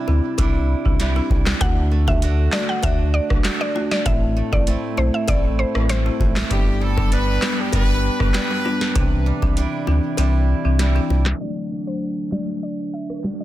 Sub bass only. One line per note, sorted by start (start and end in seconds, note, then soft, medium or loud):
0.08 0.20 D2 medium
0.38 0.75 C2 loud
0.86 1.20 C2 medium
1.30 1.54 C2 medium
1.61 2.49 D2 loud
2.83 3.20 D2 loud
3.30 3.42 B1 medium
4.06 4.42 A1 loud
4.53 4.76 A1 loud
4.98 5.10 B1 loud
5.28 5.65 A1 loud
5.75 6.10 A1 medium
6.20 6.44 A1 loud
6.51 7.39 G1 loud
7.73 8.09 G1 loud
8.20 8.31 G1 medium
8.96 9.32 C2 loud
9.42 9.66 C2 loud
9.87 10.00 D2 medium
10.18 10.54 C2 loud
10.65 11.00 C2 loud
11.10 11.34 C2 loud